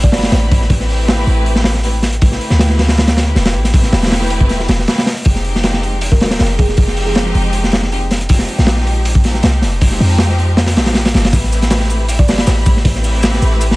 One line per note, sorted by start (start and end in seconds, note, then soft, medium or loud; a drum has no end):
0.00 0.15 A1 loud
0.00 0.11 A3 medium
0.00 0.11 C4 medium
0.00 0.11 E4 medium
0.00 0.11 G4 medium
0.00 0.11 B4 loud
0.00 0.10 D5 medium
0.00 kick medium
0.12 0.30 G1 loud
0.12 0.68 A3 medium
0.12 0.68 C4 medium
0.12 0.68 E4 medium
0.12 0.68 G4 medium
0.12 0.19 D5 medium
0.12 0.68 B5 loud
0.12 snare medium
0.12 open hi-hat medium
0.18 snare medium
0.18 open hi-hat medium
0.23 snare loud
0.23 open hi-hat medium
0.32 0.69 A1 medium
0.32 0.85 C5 medium
0.32 snare loud
0.32 open hi-hat medium
0.51 kick loud
0.51 open hi-hat medium
0.61 snare soft
0.70 1.25 A1 loud
0.70 1.82 A3 loud
0.70 1.82 C4 loud
0.70 1.82 E4 loud
0.70 1.82 G4 loud
0.70 1.82 B4 loud
0.70 kick loud
0.70 open hi-hat medium
0.80 snare soft
0.89 open hi-hat medium
1.08 snare loud
1.08 open hi-hat medium
1.17 snare soft
1.27 2.39 A1 medium
1.27 open hi-hat medium
1.46 open hi-hat medium
1.55 snare medium
1.64 snare loud
1.64 open hi-hat medium
1.75 snare soft
1.83 1.93 A3 medium
1.83 1.93 C4 medium
1.83 1.93 E4 medium
1.83 1.93 G4 medium
1.83 1.93 B4 loud
1.83 open hi-hat medium
2.03 snare medium
2.03 open hi-hat medium
2.13 closed hi-hat soft
2.22 3.15 A3 loud
2.22 3.15 C4 medium
2.22 3.15 E4 medium
2.22 3.15 G4 medium
2.22 3.15 B4 loud
2.22 kick loud
2.22 open hi-hat medium
2.32 snare soft
2.41 open hi-hat medium
2.50 3.34 D2 medium
2.50 snare medium
2.59 snare loud
2.59 open hi-hat medium
2.69 snare medium
2.79 snare medium
2.79 open hi-hat medium
2.88 snare loud
2.88 open hi-hat medium
2.98 snare loud
2.98 open hi-hat medium
3.07 snare loud
3.07 open hi-hat medium
3.17 3.72 A3 medium
3.17 3.72 C4 medium
3.17 3.72 E4 medium
3.17 3.72 G4 medium
3.17 3.72 B4 loud
3.17 snare loud
3.17 open hi-hat medium
3.36 3.56 E1 medium
3.36 snare medium
3.36 open hi-hat medium
3.45 snare loud
3.45 open hi-hat medium
3.54 3.91 A1 medium
3.64 snare soft
3.64 open hi-hat medium
3.74 4.86 A3 loud
3.74 4.86 C4 loud
3.74 4.86 E4 loud
3.74 4.86 G4 loud
3.74 4.86 B4 loud
3.74 kick loud
3.74 open hi-hat medium
3.83 snare soft
3.92 4.67 E1 loud
3.92 snare loud
3.92 open hi-hat medium
4.02 snare medium
4.02 open hi-hat medium
4.07 snare medium
4.07 open hi-hat medium
4.12 snare loud
4.12 open hi-hat medium
4.21 snare medium
4.30 open hi-hat medium
4.41 kick medium
4.49 snare soft
4.49 open hi-hat medium
4.60 snare soft
4.68 4.86 E1 loud
4.68 snare loud
4.68 open hi-hat medium
4.79 snare medium
4.88 4.96 A3 medium
4.88 4.96 C4 medium
4.88 4.96 E4 medium
4.88 4.96 G4 medium
4.88 4.97 B4 loud
4.88 snare loud
4.88 open hi-hat medium
4.97 snare loud
4.97 open hi-hat medium
5.06 snare loud
5.06 open hi-hat medium
5.17 open hi-hat medium
5.25 6.22 F1 loud
5.25 6.18 F3 medium
5.25 6.18 G#3 medium
5.25 6.18 C4 medium
5.25 6.18 D#4 medium
5.25 6.18 G4 loud
5.25 kick loud
5.25 open hi-hat medium
5.36 snare soft
5.45 open hi-hat medium
5.56 snare medium
5.63 snare loud
5.63 open hi-hat medium
5.73 snare medium
5.83 open hi-hat medium
6.01 open hi-hat medium
6.12 6.17 A#4 medium
6.12 kick medium
6.20 6.38 D#1 loud
6.20 6.75 F3 medium
6.20 6.75 G#3 medium
6.20 6.75 C4 medium
6.20 6.75 D#4 medium
6.20 6.75 G4 loud
6.20 6.27 A#4 medium
6.20 snare medium
6.20 open hi-hat medium
6.25 snare medium
6.25 open hi-hat medium
6.31 snare loud
6.31 open hi-hat medium
6.39 6.76 F1 medium
6.39 snare loud
6.39 open hi-hat medium
6.59 6.82 G#4 medium
6.59 kick loud
6.59 open hi-hat medium
6.69 snare soft
6.77 7.33 F1 loud
6.77 7.89 F3 loud
6.77 7.89 G#3 loud
6.77 7.89 C4 loud
6.77 7.89 D#4 loud
6.77 7.89 G4 loud
6.77 kick loud
6.77 open hi-hat medium
6.88 snare soft
6.96 open hi-hat medium
7.06 7.34 G#4 medium
7.15 snare loud
7.15 open hi-hat medium
7.27 snare soft
7.35 8.47 F1 medium
7.35 open hi-hat medium
7.53 open hi-hat medium
7.64 snare soft
7.72 snare loud
7.72 open hi-hat medium
7.82 snare soft
7.91 8.00 F3 medium
7.91 8.00 G#3 medium
7.91 8.00 C4 medium
7.91 8.00 D#4 medium
7.91 8.00 G4 loud
7.91 open hi-hat medium
8.11 snare soft
8.11 open hi-hat medium
8.21 closed hi-hat soft
8.29 9.22 F3 loud
8.29 9.22 G#3 medium
8.29 9.22 C4 medium
8.29 9.22 D#4 medium
8.29 9.22 G4 loud
8.29 kick loud
8.29 open hi-hat loud
8.39 snare medium
8.48 open hi-hat medium
8.58 9.42 A#1 medium
8.58 snare medium
8.67 snare loud
8.67 open hi-hat medium
8.77 snare medium
8.87 open hi-hat medium
9.05 open hi-hat medium
9.15 kick medium
9.24 9.79 F3 medium
9.24 9.79 G#3 medium
9.24 9.79 C4 medium
9.24 9.79 D#4 medium
9.24 9.79 G4 loud
9.24 snare medium
9.24 open hi-hat medium
9.34 snare soft
9.43 9.64 C2 medium
9.43 snare loud
9.43 open hi-hat medium
9.62 9.99 F1 medium
9.62 snare medium
9.62 open hi-hat medium
9.81 10.74 F3 loud
9.81 10.74 G#3 loud
9.81 10.74 C4 loud
9.81 10.74 D#4 loud
9.81 10.74 G4 loud
9.81 kick loud
9.81 open hi-hat loud
9.91 snare soft
10.00 10.78 F2 loud
10.00 open hi-hat medium
10.18 snare loud
10.18 open hi-hat medium
10.30 snare soft
10.38 open hi-hat medium
10.57 snare loud
10.57 open hi-hat medium
10.66 snare loud
10.66 open hi-hat medium
10.76 11.14 A#1 medium
10.76 11.12 F3 medium
10.76 11.12 G#3 medium
10.76 11.12 C4 medium
10.76 11.12 D#4 medium
10.76 11.12 G4 loud
10.76 snare loud
10.76 open hi-hat medium
10.86 snare loud
10.86 open hi-hat medium
10.95 snare loud
10.95 open hi-hat medium
11.05 snare loud
11.05 open hi-hat medium
11.14 11.32 G1 medium
11.14 11.31 F3 medium
11.14 11.31 G#3 medium
11.14 11.31 C4 medium
11.14 11.31 D#4 medium
11.14 11.31 G4 loud
11.14 snare loud
11.14 open hi-hat medium
11.25 snare loud
11.25 open hi-hat medium
11.33 12.30 A1 loud
11.33 12.26 A3 medium
11.33 12.26 C4 medium
11.33 12.26 E4 medium
11.33 12.26 G4 medium
11.33 12.26 B4 loud
11.33 kick loud
11.33 open hi-hat loud
11.33 shaker medium
11.44 snare soft
11.52 snare soft
11.52 open hi-hat medium
11.52 shaker medium
11.62 snare medium
11.62 closed hi-hat soft
11.70 snare loud
11.70 open hi-hat loud
11.70 shaker medium
11.80 snare medium
11.80 snare soft
11.90 open hi-hat medium
11.90 shaker medium
12.08 open hi-hat medium
12.08 shaker medium
12.19 12.25 D5 medium
12.19 kick loud
12.28 12.45 G1 loud
12.28 12.83 A3 medium
12.28 12.83 C4 medium
12.28 12.83 E4 medium
12.28 12.83 G4 medium
12.28 12.34 D5 medium
12.28 12.83 B5 medium
12.28 snare medium
12.28 open hi-hat medium
12.28 shaker medium
12.33 snare medium
12.33 open hi-hat medium
12.38 snare loud
12.38 open hi-hat medium
12.47 12.84 A1 medium
12.47 13.00 C5 medium
12.47 snare loud
12.47 open hi-hat medium
12.47 shaker medium
12.66 kick loud
12.66 open hi-hat medium
12.66 shaker medium
12.77 snare soft
12.85 13.41 A1 loud
12.85 13.76 A3 loud
12.85 13.76 C4 loud
12.85 13.76 E4 loud
12.85 13.76 G4 loud
12.85 13.76 B4 loud
12.85 kick loud
12.85 open hi-hat medium
12.95 snare soft
12.95 closed hi-hat soft
13.04 open hi-hat medium
13.04 shaker medium
13.23 snare loud
13.23 open hi-hat medium
13.23 shaker medium
13.33 snare soft
13.42 13.76 A1 medium
13.42 open hi-hat medium
13.42 shaker medium
13.52 snare medium
13.61 open hi-hat medium
13.61 shaker medium
13.71 snare medium